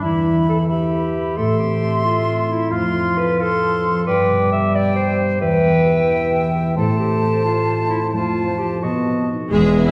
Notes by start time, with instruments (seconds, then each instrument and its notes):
Already playing: harp B3 B4
0.01 harp E2, french horn section E3, clarinet E4, cor anglais E5, flute B5
0.24 harp B3
0.47 clarinet A4, harp B4
0.68 clarinet G4, cor anglais E5, flute B5
0.92 harp B4
1.36 harp A2, french horn section A3, clarinet A4, cor anglais E5, flute C6
1.59 harp C4, clarinet G4
1.82 harp A4
2.04 clarinet F4, harp E5
2.26 harp A4
2.49 harp E4, clarinet E4
2.71 harp F2, french horn section F3, clarinet F4, cor anglais F5, flute C6
2.94 harp C4
3.17 harp A4, clarinet B4
3.39 clarinet A4, cor anglais F5, harp F5, flute C6
3.62 harp A4
3.85 harp F4
4.06 harp G2, french horn section G3, clarinet B4, cor anglais D5, flute G5
4.30 harp B2
4.52 harp G4, clarinet E5
4.75 cor anglais D5, clarinet D5, harp D5, flute G5
4.96 harp G4, clarinet C5
5.20 harp D4
5.41 harp E2, french horn section E3, clarinet B4, cor anglais E5, flute G5
5.64 harp B3
5.85 harp G4
6.09 harp E5
6.31 harp G4
6.53 harp G4
6.76 harp A2, french horn section A3, clarinet A4, cor anglais C5, flute A5
6.99 harp C4, clarinet G4
7.23 harp A4
7.44 clarinet F4, harp E5
7.90 clarinet E4, harp E4
8.12 harp F2, french horn section F3, clarinet F4, cor anglais C5, flute A5
8.37 harp C4
8.48 cor anglais C5
8.58 harp F4 A4, clarinet G4
8.82 harp B2, french horn section B3, clarinet F#4, cor anglais D#5, flute A5
9.06 harp B3
9.30 harp D#4 A4
9.51 double bass section E1, cello section E2, harp E2, trombone section E3 B3, viola section G#3, french horn section G#3, violin section G#4 E5, flute G#4, clarinet G#4
9.76 violin section B4 G#5
9.86 viola section E4, flute E5, violin section E5, clarinet E5